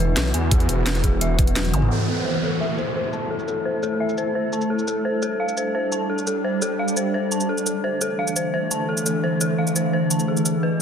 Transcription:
Already playing: E1 E3 B3 F#4
0.17 B1 B4, snare, closed hi-hat
0.34 E2 G#5, closed hi-hat
0.51 G#4, kick, closed hi-hat
0.60 closed hi-hat
0.69 E1 G#4, closed hi-hat
0.86 B4, snare, closed hi-hat
0.95 snare, closed hi-hat
1.04 G#4, kick, closed hi-hat
1.21 E1 E5, closed hi-hat
1.39 B4, kick, closed hi-hat
1.47 closed hi-hat
1.56 B4, snare, closed hi-hat, high tom
1.65 closed hi-hat, high tom
1.74 G#1 G#5, closed hi-hat, mid tom, zap
1.82 mid tom
1.91 A3 E4 A4, downlifter
2.08 A4, shaker
2.26 C5
2.43 A4, shaker
2.61 E5
2.69 shaker
2.78 C5, shaker
2.96 C5
3.13 A5, shaker
3.30 A4
3.39 shaker
3.48 A4, shaker
3.65 C5
3.83 A4, shaker
4.00 E5
4.09 shaker
4.18 C5, shaker
4.35 C5
4.53 A5, shaker
4.61 shaker
4.70 G3 D4 A4
4.79 shaker
4.87 A4, shaker
5.05 C5
5.22 A4, shaker
5.40 F5
5.49 shaker
5.57 C5, shaker
5.75 C5
5.92 A5, shaker
6.10 A4
6.18 shaker
6.27 A4, shaker
6.44 C5
6.62 A4, shaker
6.79 F5
6.88 shaker
6.97 C5, shaker
7.14 C5
7.32 A5, shaker
7.40 shaker
7.49 D3 E3 A3 A4
7.58 shaker
7.66 A4, shaker
7.84 C5
8.01 A4, shaker
8.19 F5
8.28 shaker
8.36 C5, shaker
8.54 C5
8.71 A5, shaker
8.89 A4
8.97 shaker
9.06 A4, shaker
9.24 C5
9.41 A4, shaker
9.58 F5
9.67 shaker
9.76 C5, shaker
9.93 C5
10.11 A5, shaker
10.19 shaker
10.28 G#4
10.37 shaker
10.46 G#4, shaker
10.63 B4

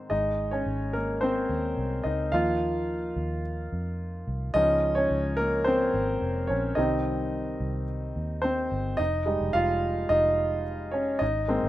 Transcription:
Already playing: G#2 D#3 C4 C5
0.10 G#1 G#3 D#4 D#5
0.51 C#4 C#5
0.66 G#1
0.93 A#3 A#4
1.21 C4 C5
1.49 D#2
1.77 C2
2.04 C#2 D#4 D#5
2.32 D#2 F3 A#3 D#4 F4 F5
3.16 D#2
3.73 F2
4.27 C2
4.54 C#2 F3 G#3 C#4 D#4 D#5
4.95 C#4 C#5
5.11 C#2
5.37 A#3 A#4
5.64 C4 C5
5.94 G#1
6.22 F1
6.47 A#1 C#4 C#5
6.75 C2 D#3 G3 C4 D#4 D#5
7.60 C2
8.16 D#2
8.42 C4 C5
8.72 G1
8.97 F1 D#4 D#5
9.26 G3 G#3 D#4
9.41 F1
9.53 F1 F4 F5
10.09 F1 D#4 D#5
10.91 C#4 C#5
11.19 G#1 D#4 D#5
11.48 G#3 A#3 C4
11.63 G#1

